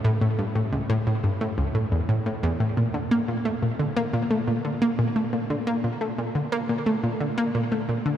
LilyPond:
\new Staff \with { instrumentName = "Synth arpeggio sound" } { \clef bass \time 4/4 \key a \mixolydian \tempo 4 = 88 a,16 a,16 g,16 a,16 cis,16 a,16 a,16 g,16 a,16 cis,16 a,16 e,16 a,16 a,16 e,16 a,16 | \key bes \lydian bes,16 d16 bes16 bes,16 a16 bes,16 d16 bes16 bes,16 a16 bes,16 d16 bes16 bes,16 a16 bes,16 | d16 bes16 bes,16 a16 bes,16 d16 bes16 bes,16 a16 bes,16 d16 bes16 bes,16 a16 bes,16 d16 | }